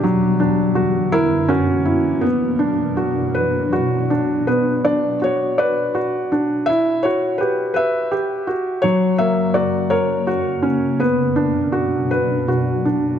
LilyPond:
<<
  \new Staff \with { instrumentName = "Felt piano" } { \time 6/8 \key b \minor \tempo 4. = 54 << { d'4 r8 e'8 cis'4 | b2 r4 | b'8 d''8 cis''8 d''4. | e''8 cis''8 b'8 b'4 r8 |
cis''8 e''8 d''8 cis''4. | b'2 r4 | } \\ { fis8 d'8 fis'8 ais'8 fis'8 e'8 | r8 d'8 fis'8 b'8 fis'8 d'8 | b8 d'8 fis'8 b'8 fis'8 d'8 | e'8 fis'8 g'8 e''8 g'8 fis'8 |
fis8 ais8 fis'8 ais'8 fis'8 cis'8 | b8 d'8 fis'8 b'8 fis'8 d'8 | } >> }
  \new Staff \with { instrumentName = "Ambient pad" } { \clef bass \time 6/8 \key b \minor << { <d fis b>4. <e ais>4. | <b, fis d'>2. | r2. | r2. |
<fis, cis ais>2. | <b, fis d'>2. | } \\ { fis,2. | r2. | r2. | r2. |
r2. | r2. | } >> }
>>